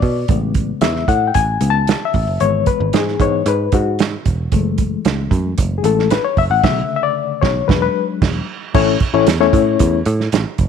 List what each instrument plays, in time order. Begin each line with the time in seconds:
Already playing: reed electric piano D5
0.02 picked electric bass B2, kick, open hi-hat
0.28 picked electric bass A1, reed electric piano C#3 G#3 B3, kick, closed hi-hat
0.54 kick, closed hi-hat
0.81 picked electric bass E2, reed electric piano E5, snare, closed hi-hat
0.96 snare
1.08 picked electric bass A2, reed electric piano F#5, kick, closed hi-hat
1.27 reed electric piano G5
1.34 picked electric bass A1, reed electric piano G#5, kick, closed hi-hat
1.60 picked electric bass C#2, reed electric piano C#3 G#3 B3, closed hi-hat
1.70 reed electric piano A5
1.87 snare, closed hi-hat
2.05 reed electric piano E5
2.14 picked electric bass A1, kick, open hi-hat
2.27 picked electric bass F#1
2.40 picked electric bass G#1, reed electric piano E3 G#3 B3 C#5, closed hi-hat
2.66 reed electric piano B4, kick, closed hi-hat
2.80 picked electric bass G#1
2.93 picked electric bass G#2, reed electric piano G#4, snare, closed hi-hat
3.08 snare
3.20 picked electric bass G#2, reed electric piano E3 G#3 B3 C#5, kick, closed hi-hat
3.46 picked electric bass G#2, reed electric piano B4, closed hi-hat
3.72 picked electric bass G#2, reed electric piano F#4, kick, closed hi-hat
3.99 snare, closed hi-hat
4.26 picked electric bass E1, kick, closed hi-hat
4.52 picked electric bass F#1, reed electric piano E3 G#3 A3, kick, closed hi-hat
4.78 kick, closed hi-hat
5.05 picked electric bass C#2, snare, closed hi-hat
5.31 picked electric bass F#2, kick, closed hi-hat
5.58 picked electric bass F#1, kick, closed hi-hat
5.78 reed electric piano G#4
5.83 picked electric bass A1, reed electric piano E3 G#3 A3 A4, closed hi-hat
5.99 snare
6.11 reed electric piano B4, snare, closed hi-hat
6.25 reed electric piano C#5
6.37 picked electric bass F#1, reed electric piano E5, kick, open hi-hat
6.50 picked electric bass A1, reed electric piano F#5
6.63 picked electric bass B1, reed electric piano C#3 D3 A3 E5, kick, snare, crash
6.96 reed electric piano E5
7.03 reed electric piano D5
7.42 picked electric bass B1, reed electric piano C#5, kick, snare
7.67 picked electric bass E1, reed electric piano F#3 G#3 D4 B4, kick, snare
7.82 reed electric piano B4
8.22 picked electric bass E1, kick, snare, crash
8.74 picked electric bass A1, reed electric piano A3 C#4 E4 C#5, kick, crash
9.00 kick, closed hi-hat
9.14 picked electric bass A1, reed electric piano A3 C#4 E4 C#5
9.27 picked electric bass E2, snare, closed hi-hat
9.40 reed electric piano A3 C#4 E4 C#5, snare
9.53 picked electric bass A2, kick, closed hi-hat
9.79 picked electric bass E2, kick, closed hi-hat
10.06 picked electric bass A2, closed hi-hat
10.20 snare
10.32 picked electric bass A1, snare, closed hi-hat
10.58 picked electric bass F#1, kick, closed hi-hat